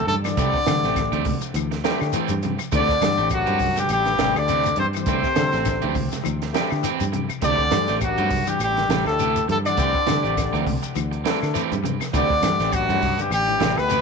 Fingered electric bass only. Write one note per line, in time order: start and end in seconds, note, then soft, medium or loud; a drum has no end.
0.07 0.35 G2 medium
0.37 0.53 C2 loud
0.67 0.82 D3 loud
0.83 1.10 A1 medium
1.12 1.40 D2 loud
1.41 muted fingered electric bass stroke soft
1.54 1.82 D2 medium
2.01 2.13 D3 loud
2.30 2.58 G2 loud
2.59 muted fingered electric bass stroke soft
2.73 3.00 D2 loud
3.02 3.17 G2 loud
3.19 3.46 A1 loud
3.47 3.87 G2 loud
3.90 4.17 A1 loud
4.19 4.34 A1 loud
4.36 4.75 D2 medium
4.77 5.05 G2 medium
5.07 5.22 C2 medium
5.36 5.52 D3 medium
5.54 5.81 A1 loud
5.84 6.11 D2 loud
6.26 6.53 D2 loud
6.72 6.83 D3 medium
7.01 7.28 G2 medium
7.29 muted fingered electric bass stroke soft
7.43 7.70 D2 loud
7.71 7.87 G2 loud
7.89 8.16 A1 loud
8.18 8.58 G2 loud
8.60 8.87 A1 loud
8.89 9.05 A1 loud
9.05 9.45 D2 medium
9.49 9.76 G2 medium
9.78 9.93 C2 loud
10.08 10.23 D3 medium
10.24 10.51 A1 medium
10.54 10.81 D2 loud
10.84 muted fingered electric bass stroke soft
10.96 11.23 D2 medium
11.43 11.54 D3 medium
11.72 11.99 G2 medium
12.00 muted fingered electric bass stroke soft
12.14 12.41 D2 loud
12.42 12.58 G2 loud
12.60 12.87 A1 loud
12.89 13.29 G2 loud
13.30 13.58 A1 medium
13.61 13.75 A1 loud
13.76 14.01 D2 medium